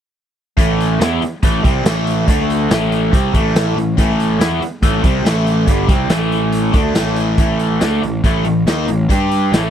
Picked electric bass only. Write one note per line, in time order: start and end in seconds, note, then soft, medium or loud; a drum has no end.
0.57 0.97 A1 medium
1.00 1.20 E2 medium
1.22 muted picked electric bass stroke soft
1.43 1.63 A1 medium
1.64 1.83 C2 medium
1.85 2.24 A1 medium
2.28 2.67 D2 medium
2.71 3.10 A1 medium
3.13 3.33 C2 loud
3.34 3.73 A1 loud
3.76 3.96 A1 medium
3.98 4.37 A1 medium
4.40 4.60 E2 loud
4.61 muted picked electric bass stroke soft
4.82 5.02 A1 medium
5.03 5.23 C2 loud
5.24 5.64 A1 medium
5.67 5.87 G1 medium
5.89 6.09 C2 medium
6.10 6.70 A1 medium
6.74 6.94 D2 medium
6.94 7.35 A1 medium
7.38 7.78 A1 medium
7.82 8.01 D2 medium
8.03 8.23 A1 medium
8.24 8.43 A1 medium
8.45 8.65 A1 medium
8.66 8.86 D#2 medium
8.87 9.07 A1 medium
9.10 9.49 G2 medium
9.52 9.70 A1 medium